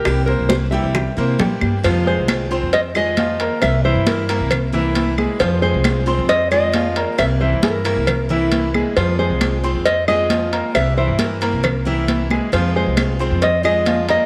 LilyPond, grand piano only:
\new Staff \with { instrumentName = "Grand piano" } { \time 4/4 \key f \minor \tempo 4 = 135 <g' g''>8 <bes bes' c''>4 <g g' g''>4 <bes bes' c''>8 <g g' g''>4 | <f f' f''>8 <aes aes' aes''>4 <c' c'' c'''>4 <aes aes' aes''>8 <f f' f''>8 <bes bes' bes''>8~ | <bes bes' bes''>8 <e e' e''>4 <bes bes' bes''>4 <e e' e''>4 <aes aes' aes''>8 | <f f' f''>8 <aes aes' aes''>4 <c' c'' c'''>4 <aes aes' aes''>8 <f f' f''>8 <bes bes' bes''>8~ |
<bes bes' bes''>8 <e e' e''>4 <bes bes' bes''>4 <e e' e''>4 <aes aes' aes''>8 | <f f' f''>8 <aes aes' aes''>4 <c' c'' c'''>4 <aes aes' aes''>8 <f f' f''>8 <bes bes' bes''>8~ | <bes bes' bes''>8 <e e' e''>4 <bes bes' bes''>4 <e e' e''>4 <aes aes' aes''>8 | <f f' f''>8 <aes aes' aes''>4 <c' c'' c'''>4 <aes aes' aes''>8 <f f' f''>8 <bes bes' bes''>8 | }